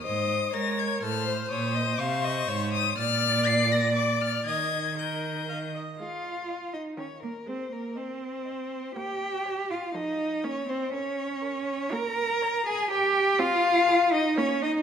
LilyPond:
<<
  \new Staff \with { instrumentName = "Violin" } { \time 3/4 \key aes \major \tempo 4 = 122 ees'''4 bes'''8 aes'''8 f'''4 | ees'''4 des'''4. ees'''8 | f'''4 c''''8 bes'''8 d'''8 f'''8 | aes'''4 g'''4. r8 |
r4 ees''4 g''4 | r4 ees''4 ees''4 | r4 des''4 a'4 | r4 bes'4 bes'4 |
r4 des''4 des''4 | r4 aes'4 bes'4 | }
  \new Staff \with { instrumentName = "Violin" } { \time 3/4 \key aes \major c''4 bes'4 a'8 c''8 | des''8 ees''8 f''8 ees''8 des''4 | d''2 d''4 | ees''4 ees''4. r8 |
f''4. ees''8 des''8 bes'8 | c''8 bes'8 c''2 | g''4. f''8 ees''4 | des''8 c''8 des''2 |
bes''4. aes''8 g''4 | f''4. ees''8 des''8 ees''8 | }
  \new Staff \with { instrumentName = "Cello" } { \time 3/4 \key aes \major aes,4 aes4 a,4 | bes,4 c4 aes,4 | bes,2. | ees2~ ees8 r8 |
f'4. ees'8 des'8 bes8 | c'8 bes8 c'2 | g'4. f'8 ees'4 | des'8 c'8 des'2 |
bes'4. aes'8 g'4 | f'4. ees'8 des'8 ees'8 | }
  \new Staff \with { instrumentName = "Viola" } { \time 3/4 \key aes \major ees''4 des''4 c''4~ | c''2. | d''2. | ees''4 bes'4 f''8 ees''8 |
aes4 r4 ees4 | aes4 r2 | bes4 r4 f4 | bes4 r2 |
bes4 r2 | c'4 r4 bes4 | }
>>